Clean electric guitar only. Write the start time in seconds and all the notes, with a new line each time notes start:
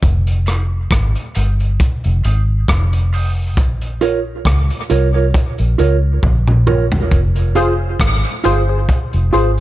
0.46 F4 G#4 C5
1.35 F4 G#4 C5
2.24 F4 G#4 C5
3.13 F4 G#4 C5
4.01 F4 A#4 C#5
4.90 F4 A#4 C#5
5.14 F4 A#4 C#5
5.78 F4 A#4 C#5
6.67 F4 A#4 C#5
7.55 F4 G#4 C5
8.44 F4 G#4 C5
9.33 F4 G#4 C5